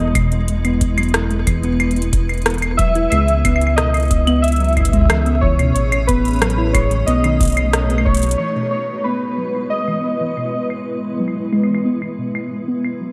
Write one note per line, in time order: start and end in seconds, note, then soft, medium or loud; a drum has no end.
0.00 3.09 E1 loud
0.00 3.12 G#3 medium
0.00 6.29 B3 medium
0.00 7.08 E4 medium
0.00 4.17 B4 medium
0.00 0.10 D#5 loud
0.15 0.30 B2 medium
0.15 kick loud
0.15 closed hi-hat medium
0.15 claves medium
0.32 closed hi-hat soft
0.48 closed hi-hat medium
0.65 0.80 B3 medium
0.65 closed hi-hat soft
0.65 claves soft
0.81 kick loud
0.81 closed hi-hat medium
0.98 1.12 F#3 medium
0.98 closed hi-hat soft
0.98 claves medium
1.03 closed hi-hat soft
1.09 closed hi-hat soft
1.14 1.20 E4 medium
1.14 cross-stick loud
1.14 closed hi-hat medium
1.31 1.45 G#3 loud
1.31 closed hi-hat soft
1.47 1.57 E3 medium
1.47 kick loud
1.47 closed hi-hat medium
1.47 claves medium
1.63 1.69 B3 loud
1.63 closed hi-hat soft
1.80 1.86 E3 loud
1.80 closed hi-hat soft
1.80 claves medium
1.91 closed hi-hat soft
1.96 2.11 B2 medium
1.96 closed hi-hat soft
2.02 closed hi-hat soft
2.13 kick loud
2.13 closed hi-hat medium
2.29 closed hi-hat soft
2.29 claves soft
2.34 closed hi-hat soft
2.38 closed hi-hat soft
2.42 closed hi-hat soft
2.46 2.61 B3 medium
2.46 cross-stick loud
2.46 closed hi-hat medium
2.54 closed hi-hat soft
2.58 closed hi-hat soft
2.62 closed hi-hat soft
2.62 claves medium
2.77 2.94 F#3 medium
2.77 3.09 E5 loud
2.77 kick loud
2.77 closed hi-hat medium
2.95 3.01 E4 medium
2.95 closed hi-hat soft
3.10 5.72 C#2 medium
3.10 3.27 G#3 loud
3.10 3.79 E5 loud
3.10 closed hi-hat medium
3.10 claves medium
3.28 3.38 E3 medium
3.28 closed hi-hat soft
3.45 3.51 B3 loud
3.45 kick loud
3.45 closed hi-hat medium
3.45 claves medium
3.56 claves medium
3.61 3.67 E3 loud
3.61 closed hi-hat soft
3.67 7.60 C#4 medium
3.67 claves soft
3.76 3.93 B2 medium
3.76 4.45 D#5 loud
3.76 cross-stick loud
3.76 closed hi-hat medium
3.94 closed hi-hat soft
3.94 claves medium
3.97 closed hi-hat soft
4.00 closed hi-hat soft
4.03 closed hi-hat soft
4.05 closed hi-hat soft
4.08 closed hi-hat soft
4.11 7.60 G#4 medium
4.11 kick loud
4.11 closed hi-hat medium
4.27 4.42 B3 medium
4.27 7.60 C#5 medium
4.27 closed hi-hat soft
4.27 claves medium
4.42 5.45 E5 loud
4.42 closed hi-hat medium
4.48 closed hi-hat soft
4.52 closed hi-hat soft
4.56 4.75 F#3 medium
4.56 closed hi-hat soft
4.60 closed hi-hat soft
4.64 closed hi-hat soft
4.68 closed hi-hat soft
4.73 closed hi-hat soft
4.77 4.83 E4 medium
4.77 kick soft
4.77 closed hi-hat soft
4.77 claves medium
4.81 kick medium
4.85 kick medium
4.85 closed hi-hat medium
4.89 kick medium
4.93 5.08 G#3 loud
4.93 kick medium
4.93 closed hi-hat soft
4.97 kick medium
5.01 kick medium
5.06 kick medium
5.10 5.20 E3 medium
5.10 cross-stick loud
5.10 closed hi-hat medium
5.10 claves medium
5.26 5.32 B3 loud
5.26 closed hi-hat soft
5.41 5.49 E3 loud
5.41 5.73 C#5 medium
5.41 kick loud
5.59 5.74 B2 medium
5.59 closed hi-hat soft
5.59 claves medium
5.74 7.04 A1 medium
5.74 8.39 A3 medium
5.74 6.09 C#5 loud
5.74 closed hi-hat medium
5.92 closed hi-hat soft
5.92 claves medium
6.07 6.24 B3 medium
6.07 6.76 B4 medium
6.07 kick loud
6.07 closed hi-hat medium
6.25 closed hi-hat soft
6.28 closed hi-hat soft
6.33 closed hi-hat soft
6.36 closed hi-hat soft
6.39 6.56 F#3 medium
6.39 cross-stick loud
6.39 closed hi-hat soft
6.42 closed hi-hat medium
6.42 claves medium
6.50 closed hi-hat soft
6.58 6.64 E4 medium
6.73 6.89 G#3 loud
6.73 7.08 C#5 medium
6.73 kick loud
6.73 closed hi-hat loud
6.73 claves medium
6.91 7.01 E3 medium
6.91 closed hi-hat soft
7.06 8.36 B1 medium
7.06 7.14 B3 loud
7.06 8.02 D#5 medium
7.06 closed hi-hat medium
7.24 7.30 D#3 loud
7.24 closed hi-hat soft
7.24 claves medium
7.40 7.55 B2 medium
7.40 kick loud
7.40 closed hi-hat medium
7.43 closed hi-hat medium
7.45 closed hi-hat medium
7.48 closed hi-hat soft
7.50 13.12 B3 medium
7.50 closed hi-hat soft
7.52 closed hi-hat soft
7.55 closed hi-hat soft
7.57 closed hi-hat soft
7.57 claves medium
7.67 9.76 F#4 medium
7.67 13.12 B4 medium
7.73 cross-stick loud
7.73 closed hi-hat medium
7.90 8.05 B3 medium
7.90 closed hi-hat soft
7.98 claves medium
8.05 8.37 C#5 medium
8.05 kick loud
8.15 closed hi-hat medium
8.17 closed hi-hat medium
8.19 closed hi-hat soft
8.22 8.38 F#3 medium
8.22 closed hi-hat soft
8.22 closed hi-hat medium
8.24 closed hi-hat soft
8.26 closed hi-hat soft
8.29 closed hi-hat soft
8.31 closed hi-hat medium
8.38 8.45 E3 loud
8.38 13.12 G#3 medium
8.38 8.70 C#5 medium
8.56 8.71 B2 medium
8.71 9.06 C#5 medium
8.71 claves medium
8.78 13.12 E4 medium
9.04 9.20 B3 medium
9.04 9.73 B4 medium
9.04 claves medium
9.38 9.53 F#3 medium
9.55 9.61 E4 medium
9.55 claves soft
9.70 9.86 G#3 medium
9.70 10.65 D#5 medium
9.88 9.98 E3 medium
9.88 claves medium
10.04 10.10 B3 loud
10.21 10.27 E3 loud
10.37 10.52 B2 medium
10.37 claves soft
10.70 claves medium
10.87 11.02 B3 medium
11.20 11.35 F#3 medium
11.28 claves soft
11.36 11.42 E4 medium
11.53 11.67 G#3 loud
11.53 claves soft
11.64 claves soft
11.69 11.79 E3 medium
11.75 claves medium
11.86 11.91 B3 medium
12.02 12.08 E3 loud
12.02 claves medium
12.19 12.33 B2 medium
12.35 claves medium
12.68 12.83 B3 medium
12.84 claves soft
13.01 13.12 F#3 medium